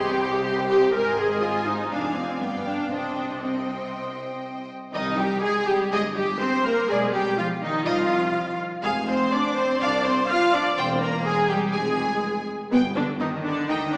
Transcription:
0.00 0.94 C2 medium
0.00 0.94 C3 medium
0.00 0.68 G4 loud
0.09 0.22 C5 medium
0.09 0.21 G5 medium
0.22 0.34 G4 medium
0.22 0.34 D#5 medium
0.22 0.34 C6 medium
0.33 0.46 C5 medium
0.33 0.45 G5 medium
0.46 0.57 G4 medium
0.46 0.57 D#5 medium
0.46 0.57 C6 medium
0.58 0.70 C5 medium
0.58 0.71 G5 medium
0.70 0.94 G4 loud
0.70 0.82 G4 medium
0.70 0.82 D#5 medium
0.70 0.83 C6 medium
0.82 0.93 C5 medium
0.82 0.95 G5 medium
0.94 1.88 G#1 medium
0.94 1.88 G#2 medium
0.94 1.18 A#4 loud
0.94 1.88 C5 medium
0.94 1.88 D#5 medium
0.94 1.89 G#5 medium
1.19 1.43 G#4 medium
1.43 1.67 F4 medium
1.67 1.92 D#4 medium
1.92 2.40 F1 medium
1.92 2.40 F2 medium
1.92 2.16 D4 medium
1.92 2.41 D5 medium
1.92 2.40 F5 medium
1.92 2.41 G#5 medium
2.17 2.41 C4 medium
2.41 2.91 G1 medium
2.41 2.92 G2 medium
2.41 2.66 B3 medium
2.41 2.91 D5 medium
2.41 2.91 F5 medium
2.41 2.91 G5 medium
2.66 2.91 D4 medium
2.91 4.73 C2 medium
2.91 4.73 C3 medium
2.91 3.41 D4 medium
2.91 3.40 C5 soft
2.91 3.40 D#5 medium
2.91 3.41 G5 medium
3.41 4.43 C4 medium
3.41 4.70 C5 medium
3.41 4.70 D#5 medium
3.41 4.71 G5 medium
4.93 5.34 C2 medium
4.93 5.16 D#3 medium
4.93 5.17 D#4 medium
4.93 5.16 D#5 medium
4.93 5.17 D#5 medium
5.18 5.43 G3 medium
5.18 5.43 G4 loud
5.18 5.42 G5 medium
5.42 5.67 G#3 medium
5.42 5.67 G#4 loud
5.42 5.66 G#5 medium
5.68 5.91 G3 medium
5.68 5.92 G4 medium
5.68 5.76 G5 medium
5.92 6.32 G1 medium
5.92 6.00 G#3 medium
5.92 6.00 G#4 medium
5.92 6.15 D#5 medium
5.92 6.00 G#5 medium
6.16 6.24 G3 medium
6.16 6.40 G4 loud
6.16 6.40 G5 medium
6.41 6.64 C4 medium
6.41 6.65 C5 medium
6.41 6.65 C6 medium
6.65 6.89 A#3 medium
6.65 6.89 A#4 loud
6.65 6.89 A#5 medium
6.89 7.29 B1 medium
6.89 7.13 G#3 medium
6.89 7.14 G#4 medium
6.89 7.12 D5 medium
6.89 6.98 G#5 medium
7.13 7.38 G3 medium
7.13 7.37 G4 medium
7.13 7.38 G5 medium
7.38 7.46 F3 medium
7.38 7.46 F4 medium
7.38 7.46 F5 medium
7.62 7.86 D#3 medium
7.62 7.86 D#4 medium
7.62 7.86 D#5 medium
7.86 8.26 C2 medium
7.86 8.59 F3 medium
7.86 8.57 F4 medium
7.86 8.09 D#5 medium
7.86 8.58 F5 medium
8.82 9.23 F1 medium
8.82 8.91 G#3 medium
8.82 8.92 G#4 medium
8.82 9.06 F5 medium
8.82 9.06 G#5 medium
9.08 9.32 C4 medium
9.08 9.31 C5 medium
9.08 9.32 C6 medium
9.32 9.57 D4 medium
9.32 9.56 D5 loud
9.32 9.57 D6 medium
9.56 9.81 C4 medium
9.56 9.80 C5 medium
9.56 9.81 C6 medium
9.80 10.21 C2 medium
9.80 10.05 D4 medium
9.80 10.04 D5 loud
9.80 10.03 F5 medium
9.80 10.05 D6 loud
10.05 10.13 C4 medium
10.05 10.29 C5 loud
10.05 10.29 C6 medium
10.29 10.53 F4 loud
10.29 10.53 F5 loud
10.29 10.53 F6 loud
10.53 10.62 D4 medium
10.53 10.78 D5 loud
10.53 10.61 D6 medium
10.77 11.18 E1 medium
10.77 11.01 C4 medium
10.77 11.02 C5 medium
10.77 11.00 G5 medium
10.77 10.85 C6 medium
11.01 11.26 A#3 medium
11.01 11.10 A#4 loud
11.01 11.25 A#5 medium
11.25 11.50 G#3 medium
11.25 11.50 G#4 medium
11.25 11.49 G#5 medium
11.49 11.74 G3 medium
11.49 11.74 G4 medium
11.49 11.57 G5 medium
11.73 12.14 F1 medium
11.73 12.47 G#3 medium
11.73 12.47 G#4 medium
11.73 12.45 G#5 medium
11.73 11.96 G#5 medium
12.71 13.12 G1 medium
12.71 12.80 B2 medium
12.71 12.80 B3 medium
12.71 12.79 B4 medium
12.71 12.95 G5 medium
12.95 13.04 D3 medium
12.95 13.04 D4 medium
12.95 13.03 D5 medium
13.20 13.44 D#3 medium
13.20 13.28 D#4 medium
13.20 13.28 D#5 medium
13.44 13.69 D3 medium
13.44 13.68 D4 medium
13.44 13.68 D5 medium
13.68 13.97 D2 medium
13.68 13.93 D#3 medium
13.68 13.77 D#4 medium
13.68 13.92 D#5 medium
13.68 13.91 G5 medium
13.92 13.97 D3 medium
13.92 13.97 D4 medium
13.92 13.97 D5 medium

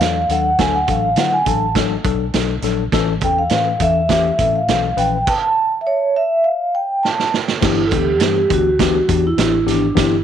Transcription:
0.00 0.24 E2 loud
0.00 0.20 F#3 medium
0.00 0.20 D4 medium
0.00 0.21 A4 medium
0.00 0.32 F5 medium
0.00 snare loud
0.00 closed hi-hat medium
0.29 0.54 D#2 medium
0.29 0.49 F#3 medium
0.29 0.49 D4 medium
0.29 0.49 A4 medium
0.29 0.58 F#5 loud
0.29 closed hi-hat medium
0.59 0.83 D2 loud
0.59 0.78 F#3 medium
0.59 0.78 D4 medium
0.59 0.78 A4 loud
0.59 0.74 G#5 loud
0.59 kick loud
0.59 snare loud
0.59 closed hi-hat medium
0.74 0.88 F#5 medium
0.88 1.13 A1 medium
0.88 1.07 F#3 medium
0.88 1.08 D4 medium
0.88 1.08 A4 medium
0.88 1.19 F5 medium
0.88 kick loud
0.88 closed hi-hat medium
1.16 1.41 D3 loud
1.16 1.36 F#3 medium
1.16 1.37 D4 medium
1.16 1.37 E4 medium
1.16 1.33 F#5 loud
1.16 snare loud
1.16 closed hi-hat medium
1.33 1.46 G#5 loud
1.46 1.96 A1 medium
1.46 1.66 F#3 medium
1.46 1.66 D4 medium
1.46 1.66 A4 medium
1.46 1.74 A5 loud
1.46 kick loud
1.46 closed hi-hat medium
1.75 1.95 F#3 loud
1.75 1.95 D4 medium
1.75 1.95 A4 loud
1.75 kick medium
1.75 snare loud
1.75 closed hi-hat loud
2.04 2.30 B1 medium
2.04 2.24 F#3 medium
2.04 2.24 D4 medium
2.04 2.25 A4 medium
2.04 kick loud
2.04 closed hi-hat medium
2.34 2.59 B1 medium
2.34 2.53 F#3 medium
2.34 2.54 D4 medium
2.34 2.54 A4 medium
2.34 snare loud
2.34 closed hi-hat medium
2.62 2.88 A#1 loud
2.62 2.83 F#3 medium
2.62 2.83 D4 medium
2.62 2.83 A4 loud
2.62 snare soft
2.62 closed hi-hat medium
2.92 3.17 A1 loud
2.92 3.12 E3 loud
2.92 3.13 C#4 loud
2.92 3.13 A4 loud
2.92 kick loud
2.92 snare loud
2.92 closed hi-hat medium
3.21 3.46 E2 medium
3.21 3.42 E3 medium
3.21 3.42 C#4 medium
3.21 3.43 A4 medium
3.21 3.38 G5 medium
3.21 kick loud
3.21 closed hi-hat medium
3.39 3.83 F5 medium
3.50 3.76 A2 loud
3.50 3.71 E3 medium
3.50 3.71 C#4 medium
3.50 3.71 B4 medium
3.50 snare loud
3.50 closed hi-hat medium
3.80 4.30 E2 medium
3.80 4.00 E3 medium
3.80 4.01 C#4 medium
3.80 4.01 A4 medium
3.80 4.57 E5 medium
3.80 kick medium
3.80 closed hi-hat medium
4.09 4.30 E3 medium
4.09 4.30 C#4 medium
4.09 4.30 G4 loud
4.09 kick medium
4.09 snare loud
4.09 closed hi-hat medium
4.39 4.69 A2 medium
4.39 4.59 E3 medium
4.39 4.59 C#4 medium
4.39 4.59 A4 medium
4.39 kick loud
4.39 closed hi-hat medium
4.56 5.00 F5 medium
4.68 4.93 B1 medium
4.68 4.88 E3 medium
4.68 4.88 C#4 medium
4.68 4.88 A4 medium
4.68 snare loud
4.68 closed hi-hat medium
4.97 5.22 A#1 medium
4.97 5.17 E3 medium
4.97 5.17 C#4 medium
4.97 5.17 B4 medium
4.97 5.29 G5 loud
4.97 closed hi-hat medium
5.27 5.42 A5 loud
5.27 kick loud
5.27 crash medium
5.43 5.70 A5 loud
5.81 5.87 E5 medium
5.87 6.14 C#5 medium
6.16 6.46 E5 loud
6.44 6.75 F5 medium
6.75 7.05 G5 medium
7.03 7.31 A5 medium
7.03 snare medium
7.19 snare medium
7.34 snare medium
7.48 snare loud
7.61 7.93 G1 loud
7.61 7.81 E3 medium
7.61 7.81 B3 medium
7.61 7.81 D4 medium
7.61 7.86 E4 loud
7.61 7.81 G4 loud
7.61 kick loud
7.61 snare loud
7.61 crash loud
7.86 7.92 A4 medium
7.91 8.20 D2 medium
7.91 8.11 E3 medium
7.91 8.11 B3 medium
7.91 8.11 D4 medium
7.91 8.11 G4 medium
7.91 8.53 G4 loud
7.91 kick loud
7.91 closed hi-hat medium
8.20 8.45 G2 loud
8.20 8.40 E3 medium
8.20 8.41 B3 medium
8.20 8.41 D4 medium
8.20 8.41 G4 medium
8.20 snare loud
8.20 closed hi-hat medium
8.49 8.99 D2 medium
8.49 8.69 E3 medium
8.49 8.69 B3 medium
8.49 8.69 D4 medium
8.49 8.69 G4 medium
8.49 kick loud
8.49 closed hi-hat medium
8.54 9.21 F#4 loud
8.79 8.99 E3 loud
8.79 8.99 B3 medium
8.79 8.99 D4 medium
8.79 8.99 G4 loud
8.79 kick medium
8.79 snare loud
8.79 closed hi-hat loud
9.08 9.33 E2 medium
9.08 9.28 E3 medium
9.08 9.28 B3 medium
9.08 9.28 D4 medium
9.08 9.28 G4 medium
9.08 kick loud
9.08 closed hi-hat medium
9.27 9.70 E4 medium
9.37 9.62 A1 medium
9.37 9.57 E3 medium
9.37 9.57 B3 medium
9.37 9.57 D4 medium
9.37 9.57 G4 medium
9.37 snare loud
9.37 closed hi-hat loud
9.66 9.91 G#1 medium
9.66 9.86 E3 medium
9.66 9.86 B3 medium
9.66 9.86 D4 medium
9.66 9.86 G4 medium
9.66 snare soft
9.66 closed hi-hat medium
9.71 9.96 D4 medium
9.95 10.21 G1 loud
9.95 10.15 E3 medium
9.95 10.15 B3 medium
9.95 10.15 D4 medium
9.95 10.16 G4 loud
9.95 kick loud
9.95 snare loud
9.95 closed hi-hat medium
10.00 10.24 E4 medium

